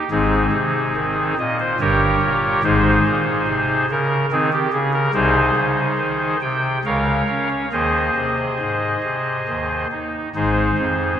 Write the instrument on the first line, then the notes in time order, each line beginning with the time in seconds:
pipe organ
0.10 G#1 G#2 C4 D#4 G#4
0.53 C3
0.96 D#3
1.39 A#2 D#5
1.59 C5
1.80 G1 G2 G4 A#4 C#5
2.22 A#2
2.63 G#1 G#2 D#4 G#4 C5
3.07 A#2
3.48 C3
3.91 C#3 A#4
4.32 D#3 C4 D#4 G#4
4.52 G4
4.73 C#3 G#4
4.93 A#4
5.14 C2 C3 D#4 G#4 C5
5.57 C#3
5.99 D#3
6.42 C3 G5
6.85 C#2 C#3 A#4 C#5 F5
7.29 C#4
7.50 C#5
7.72 D#2 D#3 G#4 C5 D#5
8.16 C3
8.60 G#2
9.04 C3
9.48 D#2 D#3
9.92 D#4
10.35 G#1 G#2 D#4 G#4 C5
10.79 F2